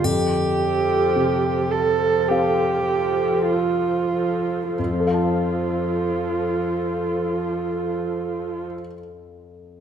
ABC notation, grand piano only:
X:1
M:4/4
L:1/8
Q:1/4=47
K:F
V:1 name="Grand piano"
F,,2 C,2 [CAf]4 | [F,,F,CAfa]8 |]